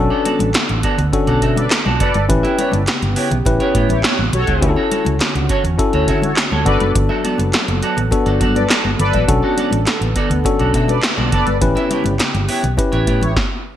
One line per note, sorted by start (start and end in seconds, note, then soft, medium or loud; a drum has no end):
0.00 2.27 D3 medium
0.00 2.26 B3 medium
0.00 0.48 C#4 medium
0.00 0.49 D4 medium
0.00 0.49 F#4 medium
0.00 0.49 A4 loud
0.00 2.26 A4 medium
0.10 0.24 B3 medium
0.10 0.25 F#4 medium
0.10 0.25 A4 medium
0.10 0.26 D5 loud
0.10 muted conga soft
0.25 0.41 B3 medium
0.25 0.40 F#4 medium
0.25 0.39 A4 medium
0.25 0.39 D5 medium
0.25 closed hi-hat medium
0.25 high conga medium
0.39 0.52 A1 medium
0.39 muted clean electric guitar stroke soft
0.39 closed hi-hat medium
0.39 high conga medium
0.54 snare loud
0.54 clap medium
0.54 closed hi-hat medium
0.69 0.82 A1 medium
0.69 muted clean electric guitar stroke soft
0.69 closed hi-hat soft
0.69 muted conga soft
0.83 1.04 B3 medium
0.83 0.98 F#4 medium
0.83 0.97 A4 medium
0.83 0.97 D5 loud
0.83 kick medium
0.83 closed hi-hat medium
0.98 1.11 D2 medium
0.98 muted clean electric guitar stroke soft
0.98 closed hi-hat medium
0.98 low conga medium
1.13 1.65 C#4 medium
1.13 1.65 D4 medium
1.13 1.65 F#4 medium
1.13 1.65 A4 medium
1.13 muted clean electric guitar stroke soft
1.13 kick loud
1.13 closed hi-hat medium
1.27 1.39 B1 loud
1.27 1.41 B3 medium
1.27 1.41 F#4 medium
1.27 1.42 A4 medium
1.27 1.43 D5 medium
1.27 closed hi-hat soft
1.42 1.66 B2 medium
1.42 1.58 B3 medium
1.42 1.56 F#4 medium
1.42 1.56 A4 medium
1.42 1.56 E5 medium
1.42 kick medium
1.42 closed hi-hat medium
1.56 1.69 A4 medium
1.56 1.69 B4 medium
1.56 1.69 D5 medium
1.56 muted clean electric guitar stroke soft
1.56 closed hi-hat medium
1.56 high conga medium
1.71 muted clean electric guitar stroke soft
1.71 snare loud
1.71 clap loud
1.71 closed hi-hat medium
1.85 1.98 B1 medium
1.85 1.99 B3 medium
1.85 1.99 F#4 medium
1.85 2.00 A4 medium
1.85 2.00 D5 medium
1.85 muted conga soft
1.85 high conga medium
2.00 2.13 F#1 medium
2.00 2.16 B3 medium
2.00 2.14 F#4 medium
2.00 2.25 A4 loud
2.00 2.14 A4 medium
2.00 2.25 B4 medium
2.00 2.25 D5 loud
2.00 2.13 D5 medium
2.00 kick medium
2.00 closed hi-hat medium
2.00 low conga medium
2.14 2.27 G1 medium
2.14 muted clean electric guitar stroke soft
2.14 closed hi-hat soft
2.14 high conga medium
2.29 2.42 A1 loud
2.29 4.60 C#3 medium
2.29 4.60 B3 medium
2.29 2.81 C#4 medium
2.29 2.81 E4 medium
2.29 2.82 G4 medium
2.29 4.60 G4 medium
2.29 2.82 B4 medium
2.29 muted clean electric guitar stroke soft
2.29 kick loud
2.29 closed hi-hat medium
2.29 muted conga soft
2.29 low conga medium
2.43 2.56 B3 medium
2.43 2.57 E4 medium
2.43 2.57 G4 medium
2.43 2.59 E5 medium
2.43 closed hi-hat soft
2.43 muted conga soft
2.58 2.74 B3 medium
2.58 2.72 E4 medium
2.58 2.72 G4 medium
2.58 2.71 C#5 medium
2.58 closed hi-hat medium
2.58 high conga medium
2.72 2.85 G1 medium
2.72 muted clean electric guitar stroke soft
2.72 closed hi-hat medium
2.72 high conga medium
2.88 snare loud
2.88 clap medium
2.88 closed hi-hat medium
2.88 muted conga soft
3.02 3.14 G1 medium
3.02 muted clean electric guitar stroke soft
3.02 closed hi-hat soft
3.02 muted conga soft
3.02 high conga soft
3.16 3.37 B3 medium
3.16 3.31 E4 medium
3.16 3.30 G4 medium
3.16 3.30 C#5 medium
3.16 open hi-hat medium
3.31 3.44 B1 medium
3.31 muted clean electric guitar stroke soft
3.31 closed hi-hat medium
3.31 low conga medium
3.45 3.58 A1 loud
3.45 3.98 C#4 medium
3.45 3.98 E4 medium
3.45 3.98 G4 medium
3.45 3.98 B4 medium
3.45 muted clean electric guitar stroke soft
3.45 kick loud
3.45 closed hi-hat medium
3.45 muted conga soft
3.60 3.74 B3 medium
3.60 3.74 E4 medium
3.60 3.75 G4 medium
3.60 3.75 C#5 medium
3.60 closed hi-hat soft
3.60 muted conga soft
3.75 3.87 A2 medium
3.75 3.91 B3 medium
3.75 3.89 E4 medium
3.75 3.89 G4 medium
3.75 3.88 C#5 medium
3.75 kick medium
3.75 closed hi-hat medium
3.89 4.02 A1 medium
3.89 4.02 E4 medium
3.89 4.02 G4 medium
3.89 4.02 C#5 medium
3.89 muted clean electric guitar stroke soft
3.89 closed hi-hat medium
3.89 high conga medium
4.04 4.25 B3 medium
4.04 4.18 E4 medium
4.04 4.18 G4 loud
4.04 4.17 C#5 loud
4.04 snare loud
4.04 clap medium
4.04 closed hi-hat medium
4.04 muted conga soft
4.18 4.31 A1 medium
4.18 muted clean electric guitar stroke soft
4.18 muted conga soft
4.18 high conga medium
4.33 4.45 B1 medium
4.33 4.70 F#4 loud
4.33 4.71 A4 loud
4.33 4.70 C#5 loud
4.33 muted clean electric guitar stroke soft
4.33 closed hi-hat medium
4.33 low conga medium
4.47 4.60 C#2 medium
4.47 4.61 B3 soft
4.47 4.62 E4 soft
4.47 4.62 G4 medium
4.47 4.62 E5 medium
4.47 kick medium
4.47 closed hi-hat soft
4.47 high conga medium
4.61 4.75 D2 loud
4.61 6.64 D3 medium
4.61 5.14 C#4 medium
4.61 6.65 C#4 medium
4.61 5.15 E4 medium
4.61 5.15 F#4 medium
4.61 6.64 F#4 medium
4.61 4.69 G4 medium
4.61 muted clean electric guitar stroke soft
4.61 kick loud
4.61 closed hi-hat loud
4.61 muted conga soft
4.61 low conga medium
4.69 5.18 A4 medium
4.76 4.90 C#4 medium
4.76 4.90 F#4 medium
4.76 4.91 A4 medium
4.76 4.91 C#5 medium
4.76 muted conga soft
4.91 5.07 C#4 medium
4.91 5.06 F#4 medium
4.91 5.05 A4 medium
4.91 5.05 C#5 medium
4.91 closed hi-hat medium
4.91 high conga medium
5.05 5.18 C#2 medium
5.05 muted clean electric guitar stroke medium
5.05 closed hi-hat medium
5.05 high conga medium
5.21 snare loud
5.21 clap medium
5.21 closed hi-hat medium
5.35 5.47 C#2 medium
5.35 muted clean electric guitar stroke soft
5.35 closed hi-hat soft
5.35 muted conga soft
5.49 5.70 C#4 medium
5.49 5.64 F#4 medium
5.49 5.63 A4 medium
5.49 5.63 C#5 medium
5.49 kick medium
5.49 closed hi-hat medium
5.64 5.77 E2 medium
5.64 muted clean electric guitar stroke soft
5.64 closed hi-hat soft
5.64 low conga medium
5.78 6.31 C#4 medium
5.78 6.31 E4 medium
5.78 6.31 F#4 medium
5.78 6.31 A4 medium
5.78 muted clean electric guitar stroke soft
5.78 kick loud
5.78 closed hi-hat medium
5.93 6.09 D2 loud
5.93 6.06 C#4 medium
5.93 6.07 F#4 medium
5.93 6.08 A4 medium
5.93 6.09 C#5 medium
5.93 closed hi-hat soft
5.93 muted conga soft
6.08 6.32 D3 medium
6.08 6.24 C#4 medium
6.08 6.22 F#4 medium
6.08 6.22 A4 medium
6.08 6.22 E5 medium
6.08 kick medium
6.08 closed hi-hat medium
6.22 6.35 F#4 medium
6.22 6.35 A4 medium
6.22 6.35 C#5 medium
6.22 muted clean electric guitar stroke soft
6.22 closed hi-hat medium
6.22 high conga medium
6.37 muted clean electric guitar stroke soft
6.37 snare loud
6.37 clap medium
6.37 closed hi-hat medium
6.37 muted conga soft
6.51 6.64 D2 medium
6.51 6.66 C#4 medium
6.51 6.66 F#4 medium
6.51 6.66 A4 medium
6.51 6.67 C#5 medium
6.51 high conga medium
6.65 6.79 G1 medium
6.65 9.26 F#3 medium
6.65 7.59 B3 medium
6.65 6.82 B3 medium
6.65 9.26 B3 medium
6.65 7.59 D4 medium
6.65 7.59 F#4 medium
6.65 6.81 F#4 medium
6.65 7.59 A4 medium
6.65 6.91 A4 loud
6.65 11.58 A4 medium
6.65 6.80 A4 medium
6.65 6.91 B4 loud
6.65 6.91 D5 loud
6.65 6.80 D5 medium
6.65 kick medium
6.65 closed hi-hat medium
6.65 low conga medium
6.80 6.93 F#1 medium
6.80 muted clean electric guitar stroke medium
6.80 closed hi-hat soft
6.80 high conga medium
6.95 7.08 G1 loud
6.95 muted clean electric guitar stroke soft
6.95 kick loud
6.95 closed hi-hat loud
6.95 muted conga soft
6.95 low conga medium
7.09 7.23 B3 medium
7.09 7.23 F#4 medium
7.09 7.24 A4 medium
7.09 7.25 E5 medium
7.09 muted conga soft
7.24 7.40 B3 medium
7.24 7.38 F#4 medium
7.24 7.38 A4 medium
7.24 7.37 D5 medium
7.24 closed hi-hat medium
7.24 high conga medium
7.38 7.51 F#1 medium
7.38 muted clean electric guitar stroke medium
7.38 closed hi-hat medium
7.38 high conga medium
7.53 snare medium
7.53 clap medium
7.53 closed hi-hat medium
7.53 muted conga soft
7.68 7.80 F#1 medium
7.68 muted clean electric guitar stroke soft
7.68 closed hi-hat soft
7.82 8.03 B3 medium
7.82 7.97 F#4 medium
7.82 7.96 A4 loud
7.82 7.96 D5 medium
7.82 closed hi-hat medium
7.97 8.09 A1 medium
7.97 muted clean electric guitar stroke soft
7.97 closed hi-hat medium
7.97 low conga medium
8.11 8.64 B3 medium
8.11 8.64 D4 medium
8.11 8.64 F#4 medium
8.11 8.64 A4 medium
8.11 muted clean electric guitar stroke soft
8.11 kick loud
8.11 closed hi-hat medium
8.11 muted conga soft
8.26 8.42 G1 loud
8.26 8.39 B3 medium
8.26 8.40 F#4 medium
8.26 8.40 A4 medium
8.26 8.41 D5 medium
8.26 closed hi-hat soft
8.40 8.65 G2 loud
8.40 8.57 B3 medium
8.40 8.55 F#4 medium
8.40 8.55 A4 medium
8.40 8.54 D5 medium
8.40 kick medium
8.40 closed hi-hat medium
8.55 8.68 A4 medium
8.55 8.68 B4 medium
8.55 8.68 D5 medium
8.55 muted clean electric guitar stroke medium
8.55 closed hi-hat soft
8.55 high conga medium
8.70 8.91 B3 medium
8.70 8.84 F#4 medium
8.70 8.84 A4 medium
8.70 8.83 D5 loud
8.70 snare loud
8.70 clap medium
8.70 closed hi-hat medium
8.70 muted conga soft
8.85 8.97 G1 medium
8.85 muted clean electric guitar stroke medium
8.85 high conga medium
8.99 9.12 G1 loud
8.99 9.24 A4 loud
8.99 9.24 B4 loud
8.99 9.24 D5 loud
8.99 muted clean electric guitar stroke soft
8.99 closed hi-hat medium
8.99 low conga medium
9.13 9.26 A1 medium
9.13 9.27 B3 medium
9.13 9.27 F#4 medium
9.13 9.28 A4 medium
9.13 9.29 E5 medium
9.13 kick medium
9.13 closed hi-hat soft
9.13 high conga medium
9.28 9.41 B1 loud
9.28 11.59 D3 medium
9.28 13.32 B3 medium
9.28 9.81 C#4 medium
9.28 9.81 D4 medium
9.28 9.81 F#4 medium
9.28 9.81 A4 medium
9.28 muted clean electric guitar stroke soft
9.28 kick loud
9.28 closed hi-hat loud
9.28 muted conga soft
9.28 low conga medium
9.42 9.56 B3 medium
9.42 9.57 F#4 medium
9.42 9.57 A4 medium
9.42 9.58 D5 medium
9.42 muted conga soft
9.57 9.74 B3 medium
9.57 9.72 F#4 medium
9.57 9.71 A4 medium
9.57 9.71 D5 medium
9.57 closed hi-hat medium
9.57 high conga medium
9.71 9.84 A1 medium
9.71 muted clean electric guitar stroke soft
9.71 closed hi-hat medium
9.71 high conga medium
9.87 snare medium
9.87 clap medium
9.87 closed hi-hat medium
10.01 10.13 A1 medium
10.01 muted clean electric guitar stroke soft
10.01 closed hi-hat soft
10.01 muted conga soft
10.16 10.36 B3 medium
10.16 10.30 F#4 loud
10.16 10.29 A4 loud
10.16 10.29 D5 loud
10.16 kick medium
10.16 closed hi-hat medium
10.30 10.43 D2 medium
10.30 muted clean electric guitar stroke soft
10.30 closed hi-hat medium
10.30 low conga medium
10.44 10.97 C#4 medium
10.44 10.97 D4 medium
10.44 10.97 F#4 medium
10.44 10.98 A4 medium
10.44 muted clean electric guitar stroke soft
10.44 kick loud
10.44 closed hi-hat medium
10.44 muted conga soft
10.59 10.72 B1 loud
10.59 10.73 B3 medium
10.59 10.73 F#4 medium
10.59 10.74 A4 medium
10.59 10.75 D5 medium
10.59 closed hi-hat soft
10.59 muted conga soft
10.74 10.98 B2 medium
10.74 10.90 B3 medium
10.74 10.88 F#4 medium
10.74 10.88 A4 medium
10.74 10.88 E5 medium
10.74 kick medium
10.74 closed hi-hat medium
10.88 11.01 A4 medium
10.88 11.01 B4 medium
10.88 11.01 D5 medium
10.88 muted clean electric guitar stroke soft
10.88 closed hi-hat medium
10.88 high conga medium
11.03 muted clean electric guitar stroke soft
11.03 snare loud
11.03 clap loud
11.03 closed hi-hat medium
11.03 muted conga soft
11.17 11.30 B1 medium
11.17 11.31 B3 medium
11.17 11.31 F#4 medium
11.17 11.32 A4 medium
11.17 11.32 D5 medium
11.17 muted conga soft
11.17 high conga medium
11.32 11.45 F#1 medium
11.32 11.48 B3 medium
11.32 11.47 F#4 medium
11.32 11.57 A4 medium
11.32 11.46 A4 medium
11.32 11.57 B4 medium
11.32 11.57 D5 loud
11.32 11.46 D5 medium
11.32 kick medium
11.32 closed hi-hat medium
11.32 low conga medium
11.47 11.59 G1 medium
11.47 muted clean electric guitar stroke soft
11.47 closed hi-hat soft
11.47 high conga medium
11.61 11.74 A1 loud
11.61 13.35 C#3 medium
11.61 12.14 C#4 medium
11.61 12.14 E4 medium
11.61 12.14 G4 medium
11.61 13.35 G4 medium
11.61 12.14 B4 medium
11.61 muted clean electric guitar stroke soft
11.61 kick loud
11.61 closed hi-hat loud
11.61 low conga medium
11.75 11.89 B3 medium
11.75 11.90 E4 medium
11.75 11.90 G4 medium
11.75 11.91 E5 medium
11.75 closed hi-hat soft
11.75 muted conga soft
11.90 12.07 B3 medium
11.90 12.05 E4 medium
11.90 12.04 G4 medium
11.90 12.04 C#5 medium
11.90 closed hi-hat medium
11.90 high conga medium
12.04 12.17 G1 medium
12.04 muted clean electric guitar stroke soft
12.04 closed hi-hat medium
12.04 high conga medium
12.20 snare loud
12.20 clap medium
12.20 closed hi-hat medium
12.34 12.46 G1 loud
12.34 muted clean electric guitar stroke soft
12.34 closed hi-hat soft
12.34 muted conga soft
12.34 high conga soft
12.48 12.69 B3 medium
12.48 12.63 E4 medium
12.48 12.62 G4 medium
12.48 12.62 C#5 medium
12.48 open hi-hat medium
12.63 12.76 B1 medium
12.63 muted clean electric guitar stroke medium
12.63 closed hi-hat medium
12.63 low conga medium
12.77 13.30 C#4 medium
12.77 13.30 E4 medium
12.77 13.30 G4 medium
12.77 13.30 B4 medium
12.77 muted clean electric guitar stroke soft
12.77 kick loud
12.77 closed hi-hat medium
12.77 muted conga soft
12.92 13.05 A1 medium
12.92 13.05 B3 medium
12.92 13.06 E4 medium
12.92 13.07 G4 medium
12.92 13.07 C#5 medium
12.92 closed hi-hat soft
13.07 13.19 A2 medium
13.07 13.23 B3 medium
13.07 13.21 E4 medium
13.07 13.21 G4 medium
13.07 13.20 C#5 medium
13.07 kick medium
13.07 closed hi-hat medium
13.22 13.34 A1 medium
13.22 13.34 E4 medium
13.22 13.34 G4 medium
13.22 13.34 C#5 medium
13.22 muted clean electric guitar stroke soft
13.22 closed hi-hat medium
13.22 high conga medium
13.36 kick loud
13.36 snare loud